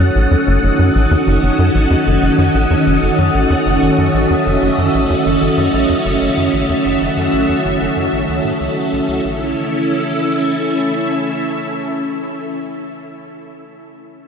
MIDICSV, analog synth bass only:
0, 0, Header, 1, 2, 480
1, 0, Start_track
1, 0, Tempo, 638298
1, 1196, Time_signature, 4, 2, 24, 8
1, 10736, End_track
2, 0, Start_track
2, 0, Title_t, "Analog synth bass"
2, 0, Program_c, 0, 38
2, 0, Note_on_c, 0, 42, 71
2, 80, Note_off_c, 0, 42, 0
2, 116, Note_on_c, 0, 33, 73
2, 201, Note_off_c, 0, 33, 0
2, 234, Note_on_c, 0, 40, 91
2, 269, Note_off_c, 0, 40, 0
2, 355, Note_on_c, 0, 30, 98
2, 440, Note_off_c, 0, 30, 0
2, 477, Note_on_c, 0, 30, 75
2, 533, Note_off_c, 0, 30, 0
2, 594, Note_on_c, 0, 42, 74
2, 680, Note_off_c, 0, 42, 0
2, 716, Note_on_c, 0, 33, 81
2, 801, Note_off_c, 0, 33, 0
2, 835, Note_on_c, 0, 40, 92
2, 869, Note_off_c, 0, 40, 0
2, 955, Note_on_c, 0, 30, 96
2, 1040, Note_off_c, 0, 30, 0
2, 1075, Note_on_c, 0, 30, 72
2, 1132, Note_off_c, 0, 30, 0
2, 1195, Note_on_c, 0, 42, 80
2, 1280, Note_off_c, 0, 42, 0
2, 1315, Note_on_c, 0, 33, 69
2, 1400, Note_off_c, 0, 33, 0
2, 1433, Note_on_c, 0, 40, 92
2, 1469, Note_off_c, 0, 40, 0
2, 1555, Note_on_c, 0, 30, 94
2, 1640, Note_off_c, 0, 30, 0
2, 1673, Note_on_c, 0, 30, 79
2, 1731, Note_off_c, 0, 30, 0
2, 1793, Note_on_c, 0, 42, 73
2, 1879, Note_off_c, 0, 42, 0
2, 1914, Note_on_c, 0, 33, 70
2, 2000, Note_off_c, 0, 33, 0
2, 2035, Note_on_c, 0, 40, 94
2, 2069, Note_off_c, 0, 40, 0
2, 2156, Note_on_c, 0, 30, 94
2, 2241, Note_off_c, 0, 30, 0
2, 2274, Note_on_c, 0, 30, 73
2, 2332, Note_off_c, 0, 30, 0
2, 2395, Note_on_c, 0, 42, 74
2, 2480, Note_off_c, 0, 42, 0
2, 2515, Note_on_c, 0, 33, 71
2, 2600, Note_off_c, 0, 33, 0
2, 2634, Note_on_c, 0, 40, 97
2, 2669, Note_off_c, 0, 40, 0
2, 2753, Note_on_c, 0, 30, 92
2, 2839, Note_off_c, 0, 30, 0
2, 2873, Note_on_c, 0, 30, 71
2, 2931, Note_off_c, 0, 30, 0
2, 2994, Note_on_c, 0, 42, 74
2, 3080, Note_off_c, 0, 42, 0
2, 3114, Note_on_c, 0, 33, 78
2, 3200, Note_off_c, 0, 33, 0
2, 3236, Note_on_c, 0, 40, 89
2, 3270, Note_off_c, 0, 40, 0
2, 3356, Note_on_c, 0, 30, 89
2, 3441, Note_off_c, 0, 30, 0
2, 3476, Note_on_c, 0, 30, 73
2, 3533, Note_off_c, 0, 30, 0
2, 3596, Note_on_c, 0, 42, 76
2, 3681, Note_off_c, 0, 42, 0
2, 3718, Note_on_c, 0, 33, 70
2, 3802, Note_off_c, 0, 33, 0
2, 3836, Note_on_c, 0, 40, 92
2, 3870, Note_off_c, 0, 40, 0
2, 3955, Note_on_c, 0, 30, 92
2, 4040, Note_off_c, 0, 30, 0
2, 4073, Note_on_c, 0, 30, 75
2, 4131, Note_off_c, 0, 30, 0
2, 4193, Note_on_c, 0, 42, 73
2, 4280, Note_off_c, 0, 42, 0
2, 4313, Note_on_c, 0, 33, 74
2, 4399, Note_off_c, 0, 33, 0
2, 4432, Note_on_c, 0, 40, 95
2, 4468, Note_off_c, 0, 40, 0
2, 4553, Note_on_c, 0, 30, 96
2, 4639, Note_off_c, 0, 30, 0
2, 4673, Note_on_c, 0, 30, 67
2, 4731, Note_off_c, 0, 30, 0
2, 4793, Note_on_c, 0, 42, 71
2, 4879, Note_off_c, 0, 42, 0
2, 4913, Note_on_c, 0, 33, 70
2, 4999, Note_off_c, 0, 33, 0
2, 5033, Note_on_c, 0, 40, 91
2, 5068, Note_off_c, 0, 40, 0
2, 5153, Note_on_c, 0, 30, 86
2, 5239, Note_off_c, 0, 30, 0
2, 5273, Note_on_c, 0, 30, 68
2, 5331, Note_off_c, 0, 30, 0
2, 5393, Note_on_c, 0, 42, 74
2, 5479, Note_off_c, 0, 42, 0
2, 5514, Note_on_c, 0, 33, 77
2, 5600, Note_off_c, 0, 33, 0
2, 5633, Note_on_c, 0, 40, 93
2, 5668, Note_off_c, 0, 40, 0
2, 5754, Note_on_c, 0, 30, 90
2, 5840, Note_off_c, 0, 30, 0
2, 5872, Note_on_c, 0, 30, 69
2, 5931, Note_off_c, 0, 30, 0
2, 5992, Note_on_c, 0, 42, 74
2, 6079, Note_off_c, 0, 42, 0
2, 6112, Note_on_c, 0, 33, 70
2, 6199, Note_off_c, 0, 33, 0
2, 6233, Note_on_c, 0, 37, 72
2, 6319, Note_off_c, 0, 37, 0
2, 6352, Note_on_c, 0, 45, 70
2, 6411, Note_off_c, 0, 45, 0
2, 6473, Note_on_c, 0, 37, 92
2, 6531, Note_off_c, 0, 37, 0
2, 6714, Note_on_c, 0, 35, 69
2, 6771, Note_off_c, 0, 35, 0
2, 6832, Note_on_c, 0, 37, 69
2, 6919, Note_off_c, 0, 37, 0
2, 6954, Note_on_c, 0, 33, 85
2, 7178, Note_off_c, 0, 33, 0
2, 10736, End_track
0, 0, End_of_file